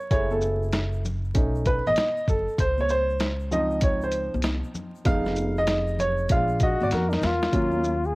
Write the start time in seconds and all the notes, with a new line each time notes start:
0.00 shaker
0.11 F#1 A3 E4 G#4 C#5, kick, closed hi-hat, shaker
0.31 A4, high conga, shaker
0.41 shaker
0.43 shaker
0.63 shaker
0.72 snare, closed hi-hat, shaker
0.92 shaker
1.05 low conga, shaker
1.24 shaker
1.34 B1 A3 C#4 D#4, kick, closed hi-hat, shaker
1.55 shaker
1.65 B4, kick, closed hi-hat, shaker
1.86 A1 D#5, high conga, shaker
1.96 snare, closed hi-hat, shaker
2.17 shaker
2.28 F#1 A4, kick, low conga, shaker
2.48 shaker
2.58 C#2 C5, kick, closed hi-hat, shaker
2.78 C#5, high conga, shaker
2.89 C5, shaker
2.90 shaker
3.10 shaker
3.19 snare, closed hi-hat, shaker
3.40 shaker
3.51 F3 C4 D#4 D#5, low conga, shaker
3.71 shaker
3.81 C#5, kick, closed hi-hat, shaker
4.02 C5, shaker
4.12 closed hi-hat, shaker
4.34 C2, high conga, shaker
4.42 snare, closed hi-hat, shaker
4.64 shaker
4.75 low conga, shaker
4.95 shaker
5.05 F1 G#3 B3 D#4 F5, kick, closed hi-hat, shaker
5.25 snare, shaker
5.36 high conga, shaker
5.38 shaker
5.57 D#5, shaker
5.67 snare, closed hi-hat, shaker
5.87 shaker
5.99 C#5, closed hi-hat, low conga, shaker
6.18 shaker
6.29 A#1 G#3 D4 F4 F5, kick, closed hi-hat, high conga, shaker
6.49 shaker
6.60 F#4 D#5, kick, closed hi-hat, shaker
6.81 G#1 D5, high conga, shaker
6.91 F2 A#4, snare, closed hi-hat, shaker
7.09 D4, snare, shaker
7.15 D#4
7.22 E2 F4, snare, high conga, low conga, shaker
7.42 snare, shaker
7.52 D#2 F#3 A#3 C#4 F4, kick, closed hi-hat, shaker
7.72 high conga, shaker
7.84 shaker
8.04 G#4, shaker